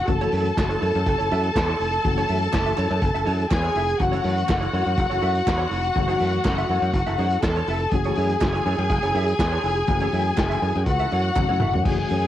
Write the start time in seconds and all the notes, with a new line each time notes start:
Already playing: E3 G#3 A3 C#4
0.07 F#1 E3 A3 C#4 F#4 A4 A5, muted clean electric guitar stroke, kick, closed hi-hat
0.21 E4 A4 C#5, closed hi-hat
0.32 F#2 E4 A4 C#5, open hi-hat
0.45 muted clean electric guitar stroke, closed hi-hat
0.57 F#1, muted clean electric guitar stroke, kick, snare, clap
0.69 E4 A4 C#5, closed hi-hat
0.80 F#2 E4 A4 C#5, open hi-hat
0.93 F#2, muted clean electric guitar stroke, closed hi-hat
1.05 F#1, muted clean electric guitar stroke, kick, closed hi-hat
1.18 F#1 E4 A4 C#5, closed hi-hat
1.31 F#2 E4 A4 E5, open hi-hat
1.43 muted clean electric guitar stroke, closed hi-hat
1.55 E2, kick, snare, clap
1.68 E4 A4 C#5, closed hi-hat
1.79 F1 E4 A4 C#5, open hi-hat
1.92 muted clean electric guitar stroke, closed hi-hat
2.04 F#1 E3 A3 C#4 F#4, muted clean electric guitar stroke, kick, closed hi-hat
2.17 E4 A4 C#5, closed hi-hat
2.28 F#2 E4 A4 E5, open hi-hat
2.41 muted clean electric guitar stroke, closed hi-hat
2.53 F#1, muted clean electric guitar stroke, kick, snare, clap
2.55 clap
2.66 E4 A4 E5, closed hi-hat
2.76 F#2 E4 A4 C#5, clap, open hi-hat
2.89 F#2, muted clean electric guitar stroke, closed hi-hat
3.01 F#1, muted clean electric guitar stroke, kick, closed hi-hat
3.14 F#1 E4 A4 E5, closed hi-hat
3.25 F#2 E4 A4 C#5, open hi-hat
3.39 muted clean electric guitar stroke, closed hi-hat
3.51 E2 G#4 G#5, kick, snare, clap
3.53 clap
3.62 E4 A4 C#5, closed hi-hat
3.75 F1 E4 A4 E5, open hi-hat
3.87 muted clean electric guitar stroke, closed hi-hat
3.99 F#1 E3 A3 C#4 F#4 F#5, muted clean electric guitar stroke, kick, closed hi-hat
4.12 E4 A4 C#5, closed hi-hat
4.24 F#2 E4 A4 C#5, open hi-hat
4.38 closed hi-hat
4.49 F#1, muted clean electric guitar stroke, kick, snare, clap
4.51 clap
4.61 E4 A4 C#5, closed hi-hat
4.73 F#2 E4 A4 C#5, open hi-hat
4.86 F#2, muted clean electric guitar stroke, closed hi-hat
4.97 F#1, muted clean electric guitar stroke, kick, closed hi-hat
5.10 F#1 E4 A4 C#5, closed hi-hat
5.22 F#2 E4 A4 E5, open hi-hat
5.35 muted clean electric guitar stroke, closed hi-hat
5.46 E2, muted clean electric guitar stroke, kick, snare, clap
5.49 clap
5.58 E4 A4 C#5, closed hi-hat
5.69 F1 E4 A4 C#5, open hi-hat
5.82 muted clean electric guitar stroke, closed hi-hat
5.94 F#1 E3 A3 C#4, muted clean electric guitar stroke, kick, closed hi-hat
5.98 F#4
6.08 E4 A4 C#5, closed hi-hat
6.19 F#2 E4 A4 E5, open hi-hat
6.33 muted clean electric guitar stroke, closed hi-hat
6.45 F#1, muted clean electric guitar stroke, kick, snare, clap
6.46 clap
6.58 E4 A4 E5, closed hi-hat
6.69 F#2 E4 A4 C#5, open hi-hat
6.82 F#2, muted clean electric guitar stroke, closed hi-hat
6.94 F#1, muted clean electric guitar stroke, kick, closed hi-hat
7.06 F#1 E4 A4 E5, closed hi-hat
7.18 F#2 E4 A4 C#5, open hi-hat
7.30 muted clean electric guitar stroke, closed hi-hat
7.43 E2 A4 A5, kick, snare, clap
7.56 E4 A4 C#5, closed hi-hat
7.67 F1 E4 A4 E5, open hi-hat
7.80 muted clean electric guitar stroke, closed hi-hat
7.91 F#1 E3 A3 C#4 F#4 G#4 G#5, muted clean electric guitar stroke, kick, closed hi-hat
8.04 E4 A4 C#5, closed hi-hat
8.15 F#2 E4 A4 C#5, open hi-hat
8.30 muted clean electric guitar stroke, closed hi-hat
8.41 F#1, muted clean electric guitar stroke, kick, snare, clap
8.43 clap
8.53 E4 A4 C#5, closed hi-hat
8.65 F#2 E4 A4 C#5, open hi-hat
8.79 F#2, muted clean electric guitar stroke, closed hi-hat
8.90 F#1, muted clean electric guitar stroke, kick, closed hi-hat
9.03 F#1 E4 A4 C#5, closed hi-hat
9.15 F#2 E4 A4 E5, open hi-hat
9.28 muted clean electric guitar stroke, closed hi-hat
9.39 E2, muted clean electric guitar stroke, kick, snare, clap
9.52 E4 A4 C#5, closed hi-hat
9.63 F1 E4 A4 C#5, open hi-hat
9.77 muted clean electric guitar stroke, closed hi-hat
9.87 F#1 E3 A3 C#4 F#4, muted clean electric guitar stroke, kick, closed hi-hat
10.00 E4 A4 C#5, closed hi-hat
10.12 F#2 E4 A4 E5, open hi-hat
10.26 muted clean electric guitar stroke, closed hi-hat
10.37 F#1, muted clean electric guitar stroke, kick, snare, clap
10.39 clap
10.49 E4 A4 E5, closed hi-hat
10.62 F#2 E4 A4 C#5, open hi-hat
10.75 F#2, muted clean electric guitar stroke, closed hi-hat
10.86 C#2 F#4 F#5, muted clean electric guitar stroke, kick, closed hi-hat
10.99 E4 A4 E5, closed hi-hat
11.11 F#2 E4 A4 C#5, open hi-hat
11.24 muted clean electric guitar stroke, closed hi-hat
11.36 F#1 E3 A3 C#4 F#4, muted clean electric guitar stroke, kick, clap, high tom
11.49 F#2 E4 A4 C#5, mid tom
11.60 F#1 E4 A4 E5, mid tom
11.73 F#2, muted clean electric guitar stroke, floor tom
11.83 F#1 E3 A3 C#4 F#4 G#4 G#5, kick, crash
12.09 F#2, open hi-hat